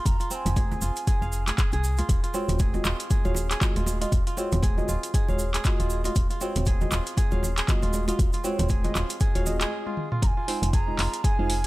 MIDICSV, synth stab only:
0, 0, Header, 1, 2, 480
1, 0, Start_track
1, 0, Tempo, 508475
1, 52, Time_signature, 4, 2, 24, 8
1, 11015, End_track
2, 0, Start_track
2, 0, Title_t, "Synth stab"
2, 0, Program_c, 0, 62
2, 2210, Note_on_c, 0, 56, 85
2, 2211, Note_on_c, 0, 65, 79
2, 2211, Note_on_c, 0, 66, 81
2, 2211, Note_on_c, 0, 73, 94
2, 2432, Note_off_c, 0, 56, 0
2, 2433, Note_off_c, 0, 65, 0
2, 2433, Note_off_c, 0, 66, 0
2, 2433, Note_off_c, 0, 73, 0
2, 2588, Note_on_c, 0, 65, 80
2, 2589, Note_on_c, 0, 66, 77
2, 2590, Note_on_c, 0, 56, 86
2, 2590, Note_on_c, 0, 75, 94
2, 2710, Note_off_c, 0, 65, 0
2, 2710, Note_off_c, 0, 66, 0
2, 2710, Note_off_c, 0, 75, 0
2, 2711, Note_off_c, 0, 56, 0
2, 3068, Note_on_c, 0, 56, 96
2, 3068, Note_on_c, 0, 65, 85
2, 3068, Note_on_c, 0, 66, 83
2, 3068, Note_on_c, 0, 73, 102
2, 3189, Note_off_c, 0, 56, 0
2, 3189, Note_off_c, 0, 66, 0
2, 3189, Note_off_c, 0, 73, 0
2, 3190, Note_off_c, 0, 65, 0
2, 3408, Note_on_c, 0, 75, 99
2, 3409, Note_on_c, 0, 56, 92
2, 3409, Note_on_c, 0, 66, 83
2, 3410, Note_on_c, 0, 65, 86
2, 3755, Note_off_c, 0, 56, 0
2, 3755, Note_off_c, 0, 66, 0
2, 3755, Note_off_c, 0, 75, 0
2, 3756, Note_off_c, 0, 65, 0
2, 3789, Note_on_c, 0, 56, 83
2, 3789, Note_on_c, 0, 65, 75
2, 3789, Note_on_c, 0, 66, 74
2, 3789, Note_on_c, 0, 75, 89
2, 3910, Note_off_c, 0, 56, 0
2, 3910, Note_off_c, 0, 65, 0
2, 3910, Note_off_c, 0, 66, 0
2, 3910, Note_off_c, 0, 75, 0
2, 4131, Note_on_c, 0, 65, 79
2, 4132, Note_on_c, 0, 56, 87
2, 4132, Note_on_c, 0, 66, 83
2, 4132, Note_on_c, 0, 73, 100
2, 4353, Note_off_c, 0, 56, 0
2, 4353, Note_off_c, 0, 65, 0
2, 4353, Note_off_c, 0, 66, 0
2, 4354, Note_off_c, 0, 73, 0
2, 4509, Note_on_c, 0, 75, 99
2, 4510, Note_on_c, 0, 56, 90
2, 4510, Note_on_c, 0, 66, 78
2, 4511, Note_on_c, 0, 65, 79
2, 4630, Note_off_c, 0, 75, 0
2, 4631, Note_off_c, 0, 56, 0
2, 4631, Note_off_c, 0, 65, 0
2, 4631, Note_off_c, 0, 66, 0
2, 4988, Note_on_c, 0, 56, 93
2, 4988, Note_on_c, 0, 65, 84
2, 4989, Note_on_c, 0, 66, 85
2, 4989, Note_on_c, 0, 73, 103
2, 5110, Note_off_c, 0, 56, 0
2, 5110, Note_off_c, 0, 65, 0
2, 5110, Note_off_c, 0, 66, 0
2, 5110, Note_off_c, 0, 73, 0
2, 5332, Note_on_c, 0, 75, 104
2, 5333, Note_on_c, 0, 56, 93
2, 5333, Note_on_c, 0, 65, 84
2, 5333, Note_on_c, 0, 66, 84
2, 5677, Note_off_c, 0, 56, 0
2, 5677, Note_off_c, 0, 65, 0
2, 5677, Note_off_c, 0, 66, 0
2, 5677, Note_off_c, 0, 75, 0
2, 5710, Note_on_c, 0, 56, 79
2, 5710, Note_on_c, 0, 66, 75
2, 5710, Note_on_c, 0, 75, 90
2, 5711, Note_on_c, 0, 65, 74
2, 5831, Note_off_c, 0, 56, 0
2, 5831, Note_off_c, 0, 65, 0
2, 5831, Note_off_c, 0, 66, 0
2, 5831, Note_off_c, 0, 75, 0
2, 6051, Note_on_c, 0, 65, 80
2, 6051, Note_on_c, 0, 66, 81
2, 6052, Note_on_c, 0, 56, 88
2, 6052, Note_on_c, 0, 73, 98
2, 6273, Note_off_c, 0, 56, 0
2, 6273, Note_off_c, 0, 65, 0
2, 6273, Note_off_c, 0, 66, 0
2, 6273, Note_off_c, 0, 73, 0
2, 6430, Note_on_c, 0, 65, 82
2, 6431, Note_on_c, 0, 56, 88
2, 6431, Note_on_c, 0, 66, 81
2, 6431, Note_on_c, 0, 75, 92
2, 6551, Note_off_c, 0, 56, 0
2, 6551, Note_off_c, 0, 65, 0
2, 6551, Note_off_c, 0, 66, 0
2, 6551, Note_off_c, 0, 75, 0
2, 6908, Note_on_c, 0, 56, 97
2, 6908, Note_on_c, 0, 65, 84
2, 6908, Note_on_c, 0, 66, 83
2, 6909, Note_on_c, 0, 73, 105
2, 7030, Note_off_c, 0, 56, 0
2, 7030, Note_off_c, 0, 65, 0
2, 7030, Note_off_c, 0, 66, 0
2, 7030, Note_off_c, 0, 73, 0
2, 7250, Note_on_c, 0, 56, 92
2, 7250, Note_on_c, 0, 66, 85
2, 7250, Note_on_c, 0, 75, 105
2, 7251, Note_on_c, 0, 65, 86
2, 7596, Note_off_c, 0, 56, 0
2, 7596, Note_off_c, 0, 65, 0
2, 7596, Note_off_c, 0, 66, 0
2, 7596, Note_off_c, 0, 75, 0
2, 7627, Note_on_c, 0, 65, 73
2, 7628, Note_on_c, 0, 56, 82
2, 7628, Note_on_c, 0, 66, 76
2, 7628, Note_on_c, 0, 75, 89
2, 7749, Note_off_c, 0, 56, 0
2, 7749, Note_off_c, 0, 65, 0
2, 7749, Note_off_c, 0, 75, 0
2, 7750, Note_off_c, 0, 66, 0
2, 7969, Note_on_c, 0, 66, 81
2, 7969, Note_on_c, 0, 73, 96
2, 7970, Note_on_c, 0, 56, 90
2, 7970, Note_on_c, 0, 65, 78
2, 8192, Note_off_c, 0, 56, 0
2, 8192, Note_off_c, 0, 65, 0
2, 8192, Note_off_c, 0, 66, 0
2, 8192, Note_off_c, 0, 73, 0
2, 8348, Note_on_c, 0, 56, 88
2, 8348, Note_on_c, 0, 65, 78
2, 8348, Note_on_c, 0, 66, 82
2, 8348, Note_on_c, 0, 75, 94
2, 8469, Note_off_c, 0, 56, 0
2, 8469, Note_off_c, 0, 65, 0
2, 8469, Note_off_c, 0, 66, 0
2, 8470, Note_off_c, 0, 75, 0
2, 8827, Note_on_c, 0, 66, 87
2, 8828, Note_on_c, 0, 56, 96
2, 8828, Note_on_c, 0, 65, 85
2, 8828, Note_on_c, 0, 73, 106
2, 8910, Note_off_c, 0, 56, 0
2, 8910, Note_off_c, 0, 66, 0
2, 8910, Note_off_c, 0, 73, 0
2, 8911, Note_off_c, 0, 65, 0
2, 8931, Note_on_c, 0, 56, 85
2, 8931, Note_on_c, 0, 65, 78
2, 8931, Note_on_c, 0, 66, 76
2, 8932, Note_on_c, 0, 75, 93
2, 9153, Note_off_c, 0, 56, 0
2, 9153, Note_off_c, 0, 65, 0
2, 9153, Note_off_c, 0, 66, 0
2, 9153, Note_off_c, 0, 75, 0
2, 9890, Note_on_c, 0, 63, 84
2, 9891, Note_on_c, 0, 56, 91
2, 9891, Note_on_c, 0, 65, 83
2, 9892, Note_on_c, 0, 72, 98
2, 10112, Note_off_c, 0, 63, 0
2, 10113, Note_off_c, 0, 56, 0
2, 10113, Note_off_c, 0, 65, 0
2, 10113, Note_off_c, 0, 72, 0
2, 10268, Note_on_c, 0, 56, 87
2, 10268, Note_on_c, 0, 63, 80
2, 10268, Note_on_c, 0, 75, 97
2, 10269, Note_on_c, 0, 65, 81
2, 10389, Note_off_c, 0, 56, 0
2, 10389, Note_off_c, 0, 75, 0
2, 10390, Note_off_c, 0, 63, 0
2, 10390, Note_off_c, 0, 65, 0
2, 10749, Note_on_c, 0, 56, 92
2, 10750, Note_on_c, 0, 63, 87
2, 10750, Note_on_c, 0, 65, 89
2, 10750, Note_on_c, 0, 72, 108
2, 10870, Note_off_c, 0, 56, 0
2, 10870, Note_off_c, 0, 63, 0
2, 10870, Note_off_c, 0, 65, 0
2, 10870, Note_off_c, 0, 72, 0
2, 11015, End_track
0, 0, End_of_file